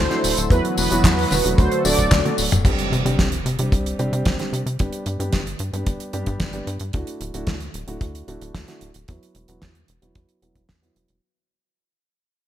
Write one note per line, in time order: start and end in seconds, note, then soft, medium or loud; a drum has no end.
0.00 0.47 D3 medium
0.00 0.49 F#3 medium
0.00 0.49 A3 medium
0.00 0.49 E4 medium
0.00 0.49 A4 loud
0.00 0.47 C5 loud
0.11 0.30 A3 medium
0.11 0.30 D4 medium
0.11 0.30 E4 medium
0.11 0.30 F#4 loud
0.11 snare soft
0.11 closed hi-hat soft
0.24 0.35 D1 medium
0.24 open hi-hat loud
0.24 tambourine medium
0.37 0.49 D1 medium
0.37 closed hi-hat medium
0.37 tambourine soft
0.50 0.62 E2 loud
0.50 1.57 E3 medium
0.50 2.63 F#3 medium
0.50 0.88 F#3 medium
0.50 1.57 B3 medium
0.50 0.88 B3 medium
0.50 0.88 E4 medium
0.50 2.63 F#4 medium
0.50 0.88 F#4 medium
0.50 0.63 B4 loud
0.50 1.57 B4 medium
0.50 kick loud
0.50 closed hi-hat medium
0.50 tambourine soft
0.65 closed hi-hat medium
0.78 0.89 E1 loud
0.78 1.60 B4 loud
0.78 open hi-hat loud
0.78 tambourine medium
0.90 1.02 E1 loud
0.90 1.11 F#3 medium
0.90 1.11 B3 medium
0.90 1.11 E4 medium
0.90 1.11 F#4 loud
0.90 closed hi-hat medium
0.90 tambourine soft
1.04 1.26 E2 loud
1.04 kick loud
1.04 snare loud
1.04 clap loud
1.04 closed hi-hat medium
1.04 tambourine soft
1.19 open hi-hat medium
1.31 1.42 E1 loud
1.31 snare soft
1.31 open hi-hat loud
1.31 high tom medium
1.31 tambourine medium
1.44 1.56 E1 loud
1.44 1.82 F#3 medium
1.44 1.82 A3 medium
1.44 1.82 D4 medium
1.44 1.82 F#4 medium
1.44 closed hi-hat medium
1.44 tambourine soft
1.58 1.69 D2 medium
1.58 2.64 D3 medium
1.58 2.64 A3 medium
1.58 2.64 A4 medium
1.58 1.83 C5 medium
1.58 kick loud
1.58 closed hi-hat medium
1.58 tambourine soft
1.72 closed hi-hat soft
1.85 1.96 D1 medium
1.85 2.22 F#3 loud
1.85 2.22 A3 medium
1.85 2.22 D4 medium
1.85 2.22 F#4 loud
1.85 2.35 D5 medium
1.85 open hi-hat loud
1.85 tambourine medium
1.99 2.10 D1 medium
1.99 kick medium
1.99 closed hi-hat medium
1.99 tambourine soft
2.11 2.23 D2 loud
2.11 kick loud
2.11 snare loud
2.11 clap loud
2.11 closed hi-hat medium
2.11 high tom medium
2.11 tambourine soft
2.25 2.45 F#3 medium
2.25 2.45 A3 medium
2.25 2.45 D4 medium
2.25 2.45 F#4 medium
2.25 closed hi-hat soft
2.25 high tom medium
2.38 2.50 D1 medium
2.38 open hi-hat loud
2.38 tambourine medium
2.52 2.63 D1 medium
2.52 closed hi-hat medium
2.52 mid tom medium
2.52 tambourine soft
2.65 2.76 C2 loud
2.65 3.02 G3 medium
2.65 3.02 C4 medium
2.65 3.02 D4 medium
2.65 3.02 G4 medium
2.65 kick loud
2.65 closed hi-hat medium
2.65 crash medium
2.65 impact medium
2.79 closed hi-hat medium
2.92 3.03 C3 loud
2.92 closed hi-hat medium
3.05 3.16 C3 loud
3.05 3.25 G3 medium
3.05 3.25 C4 medium
3.05 3.25 D4 medium
3.05 3.25 G4 loud
3.05 closed hi-hat medium
3.19 3.41 C2 loud
3.19 kick loud
3.19 snare loud
3.19 closed hi-hat medium
3.32 closed hi-hat medium
3.46 3.57 C3 medium
3.46 closed hi-hat medium
3.59 3.70 C3 loud
3.59 3.96 G3 medium
3.59 3.96 C4 medium
3.59 3.96 D4 medium
3.59 3.96 G4 medium
3.59 closed hi-hat medium
3.72 3.94 C2 medium
3.72 kick loud
3.72 closed hi-hat loud
3.86 closed hi-hat medium
3.99 4.10 C3 medium
3.99 4.36 G3 medium
3.99 4.36 C4 medium
3.99 4.36 D4 medium
3.99 4.36 G4 loud
3.99 closed hi-hat medium
4.13 4.24 C3 loud
4.13 closed hi-hat soft
4.25 4.37 C2 loud
4.25 kick loud
4.25 snare loud
4.25 closed hi-hat loud
4.39 4.59 G3 medium
4.39 4.59 C4 medium
4.39 4.59 D4 medium
4.39 4.59 G4 medium
4.39 snare soft
4.39 closed hi-hat soft
4.53 4.64 C3 medium
4.53 closed hi-hat medium
4.66 4.77 C3 medium
4.66 closed hi-hat medium
4.79 4.91 G1 loud
4.79 5.17 G3 medium
4.79 5.17 B3 medium
4.79 5.17 D4 medium
4.79 5.17 G4 medium
4.79 kick loud
4.79 closed hi-hat medium
4.93 closed hi-hat medium
5.06 5.17 G2 loud
5.06 closed hi-hat medium
5.20 5.31 G2 loud
5.20 5.39 G3 medium
5.20 5.39 B3 medium
5.20 5.39 D4 medium
5.20 5.39 G4 medium
5.20 closed hi-hat medium
5.33 5.55 G1 loud
5.33 kick loud
5.33 snare loud
5.33 closed hi-hat medium
5.47 closed hi-hat medium
5.59 5.71 G2 medium
5.59 closed hi-hat medium
5.73 5.84 G2 medium
5.73 6.10 G3 medium
5.73 6.10 B3 medium
5.73 6.10 D4 medium
5.73 6.10 G4 medium
5.73 closed hi-hat medium
5.87 5.98 G1 medium
5.87 kick loud
5.87 closed hi-hat medium
6.00 closed hi-hat medium
6.13 6.25 G2 medium
6.13 6.50 G3 medium
6.13 6.50 B3 medium
6.13 6.50 D4 medium
6.13 6.50 G4 loud
6.13 closed hi-hat medium
6.26 6.38 G2 loud
6.26 kick medium
6.26 closed hi-hat medium
6.40 6.62 G1 medium
6.40 kick loud
6.40 snare loud
6.40 closed hi-hat loud
6.53 6.73 G3 medium
6.53 6.73 B3 medium
6.53 6.73 D4 medium
6.53 6.73 G4 medium
6.53 closed hi-hat soft
6.67 6.78 G2 medium
6.67 closed hi-hat medium
6.80 6.92 G2 medium
6.80 closed hi-hat medium
6.93 7.05 D2 loud
6.93 7.31 A3 medium
6.93 7.31 D4 medium
6.93 7.31 E4 medium
6.93 7.31 F#4 medium
6.93 kick loud
6.93 closed hi-hat medium
7.07 closed hi-hat medium
7.21 7.32 D1 loud
7.21 closed hi-hat medium
7.34 7.45 D1 medium
7.34 7.54 A3 medium
7.34 7.54 D4 medium
7.34 7.54 E4 medium
7.34 7.54 F#4 medium
7.34 closed hi-hat medium
7.47 7.69 D2 medium
7.47 kick loud
7.47 snare loud
7.47 closed hi-hat medium
7.60 closed hi-hat soft
7.74 7.85 D1 medium
7.74 closed hi-hat medium
7.88 7.99 D1 medium
7.88 8.25 A3 medium
7.88 8.25 D4 medium
7.88 8.25 E4 medium
7.88 8.25 F#4 medium
7.88 closed hi-hat medium
8.01 8.23 D2 medium
8.01 kick loud
8.01 closed hi-hat medium
8.15 closed hi-hat medium
8.28 8.39 D1 medium
8.28 8.65 A3 medium
8.28 8.65 D4 medium
8.28 8.65 E4 medium
8.28 8.65 F#4 loud
8.28 closed hi-hat medium
8.41 8.52 D1 loud
8.41 closed hi-hat soft
8.55 8.66 D2 loud
8.55 kick loud
8.55 snare loud
8.55 closed hi-hat loud
8.68 8.88 A3 medium
8.68 8.88 D4 medium
8.68 8.88 E4 medium
8.68 8.88 F#4 medium
8.68 snare soft
8.68 closed hi-hat soft
8.81 8.92 D1 medium
8.81 closed hi-hat medium
8.94 9.06 D1 medium
8.94 closed hi-hat medium
9.08 9.20 E2 loud
9.08 9.45 F#3 medium
9.08 9.45 B3 medium
9.08 9.45 E4 medium
9.08 9.45 F#4 medium
9.08 kick loud
9.08 closed hi-hat medium
9.23 closed hi-hat medium
9.35 9.46 E1 medium
9.35 closed hi-hat medium
9.48 9.59 E1 loud
9.48 9.68 F#3 medium
9.48 9.68 B3 medium
9.48 9.68 E4 medium
9.48 9.68 F#4 medium
9.48 closed hi-hat soft
9.62 9.84 E2 loud
9.62 kick loud
9.62 snare loud
9.62 closed hi-hat medium
9.75 closed hi-hat soft
9.88 10.00 E1 medium
9.88 closed hi-hat medium
10.02 10.13 E1 medium
10.02 10.39 F#3 medium
10.02 10.39 B3 medium
10.02 10.39 E4 medium
10.02 10.39 F#4 medium
10.02 closed hi-hat soft
10.15 10.26 E2 medium
10.15 kick loud
10.15 closed hi-hat medium
10.29 closed hi-hat soft
10.42 10.53 E1 medium
10.42 10.62 F#3 medium
10.42 10.62 B3 medium
10.42 10.62 E4 medium
10.42 10.62 F#4 medium
10.42 closed hi-hat medium
10.55 10.67 E1 medium
10.55 kick medium
10.55 closed hi-hat medium
10.69 10.91 E2 medium
10.69 kick loud
10.69 snare loud
10.69 closed hi-hat medium
10.82 11.14 F#3 medium
10.82 11.14 B3 medium
10.82 11.14 E4 medium
10.82 11.14 F#4 medium
10.82 closed hi-hat soft
10.96 11.07 E1 medium
10.96 closed hi-hat medium
11.08 11.20 E1 medium
11.08 closed hi-hat medium